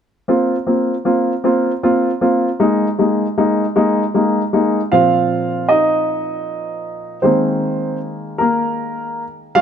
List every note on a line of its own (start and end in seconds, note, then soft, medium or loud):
0.28 0.55 A#3 soft
0.28 0.55 C4 soft
0.28 0.55 F4 soft
0.67 0.93 A#3 soft
0.67 0.93 C4 soft
0.67 0.94 F4 soft
1.05 1.32 A#3 soft
1.05 1.32 C4 soft
1.05 1.32 F4 soft
1.44 1.70 A#3 soft
1.44 1.71 C4 soft
1.44 1.71 F4 medium
1.83 2.09 A#3 soft
1.83 2.10 C4 soft
1.83 2.10 F4 medium
2.21 2.48 A#3 soft
2.21 2.48 C4 soft
2.21 2.48 F4 soft
2.60 2.86 G#3 medium
2.60 2.86 A#3 soft
2.60 2.87 D#4 medium
2.99 3.25 G#3 soft
2.99 3.25 A#3 soft
2.99 3.25 D#4 soft
3.38 3.64 G#3 soft
3.38 3.64 A#3 soft
3.38 3.64 D#4 medium
3.76 4.02 G#3 medium
3.76 4.02 A#3 medium
3.76 4.03 D#4 medium
4.14 4.41 G#3 soft
4.14 4.41 A#3 soft
4.14 4.41 D#4 soft
4.53 4.79 G#3 soft
4.53 4.79 A#3 soft
4.53 4.80 D#4 medium
4.92 7.20 A#2 soft
4.92 7.20 F3 soft
4.92 7.20 C4 soft
4.92 5.66 F4 medium
4.92 5.65 F5 medium
5.69 7.20 D#4 medium
5.69 7.19 D#5 medium
7.22 9.51 D#3 soft
7.22 9.51 G#3 soft
7.22 8.39 A#3 soft
7.22 7.97 C4 soft
7.22 7.96 C5 medium
8.38 9.23 A#3 soft
8.38 9.22 A#4 medium
9.55 9.61 F#3 soft
9.55 9.61 G#3 soft
9.55 9.61 C#4 soft
9.55 9.61 F4 medium
9.55 9.61 F5 medium